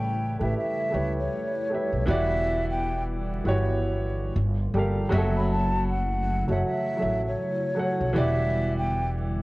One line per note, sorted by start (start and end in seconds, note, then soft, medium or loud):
0.00 0.36 A1 loud
0.00 2.04 C#3 medium
0.00 5.07 G3 medium
0.00 0.39 A3 loud
0.00 2.04 A3 medium
0.00 0.41 E4 medium
0.00 4.31 E4 loud
0.00 0.42 G4 medium
0.00 0.43 B4 medium
0.00 0.95 C#5 loud
0.00 0.37 G5 medium
0.39 0.53 A1 medium
0.39 0.76 A3 medium
0.39 0.77 E4 medium
0.39 0.77 G4 medium
0.39 0.78 B4 medium
0.39 0.55 E5 medium
0.44 0.79 E5 medium
0.58 1.14 E5 medium
0.90 1.26 C#2 medium
0.90 1.43 A3 medium
0.90 1.44 E4 medium
0.90 1.44 G4 medium
0.90 1.45 B4 medium
0.95 1.45 C#5 medium
1.19 2.05 C#5 medium
1.70 1.97 A3 medium
1.70 1.97 E4 medium
1.70 1.98 G4 medium
1.70 1.99 B4 medium
1.75 1.99 E5 medium
1.93 2.05 B1 medium
2.06 3.40 E1 loud
2.06 5.08 D3 medium
2.06 2.94 E3 loud
2.06 4.33 B3 medium
2.06 2.95 E4 loud
2.06 2.95 F#4 loud
2.06 2.96 G4 medium
2.06 2.66 E5 loud
2.10 2.96 D5 loud
2.71 3.04 G5 medium
3.44 4.32 G1 medium
3.44 4.28 E3 medium
3.44 4.28 E4 medium
3.44 4.29 F#4 medium
3.44 4.29 G4 medium
3.48 4.30 C#5 loud
4.35 4.68 G1 medium
4.35 5.10 A#3 medium
4.35 5.10 F4 medium
4.74 5.06 G1 medium
4.74 5.01 G3 medium
4.74 5.01 G4 medium
4.74 5.02 A4 medium
4.74 5.03 A#4 medium
4.79 5.03 F5 medium
5.09 6.44 F#1 loud
5.09 8.12 C#3 medium
5.09 5.98 F#3 loud
5.09 8.12 F#3 medium
5.09 8.12 A3 medium
5.09 9.42 E4 medium
5.09 5.98 F#4 loud
5.09 5.19 G4 medium
5.09 5.99 C#5 medium
5.14 6.00 E5 loud
5.18 6.02 A4 loud
5.36 5.49 B5 medium
5.51 5.84 A5 medium
5.90 6.45 F#5 medium
6.48 6.61 F#1 medium
6.48 6.84 F#3 medium
6.48 6.85 F#4 medium
6.48 6.85 A4 medium
6.48 6.86 C#5 medium
6.48 6.63 E5 medium
6.53 6.87 F#5 medium
6.66 7.21 E5 medium
6.97 7.50 F#3 medium
6.97 7.51 F#4 medium
6.97 7.51 A4 medium
6.97 7.52 C#5 medium
7.02 7.34 A1 medium
7.02 7.52 E5 medium
7.26 8.12 C#5 medium
7.75 8.03 F#3 medium
7.75 8.03 F#4 medium
7.75 8.04 A4 medium
7.75 8.05 C#5 medium
7.79 8.05 F#5 medium
8.00 8.13 B1 medium
8.13 9.42 E1 loud
8.13 9.42 D3 medium
8.13 9.01 E3 loud
8.13 9.42 G3 medium
8.13 9.42 B3 medium
8.13 9.02 E4 medium
8.13 9.03 F#4 medium
8.13 9.03 G4 medium
8.17 9.04 D5 loud
8.17 8.73 E5 loud
8.78 9.11 G5 medium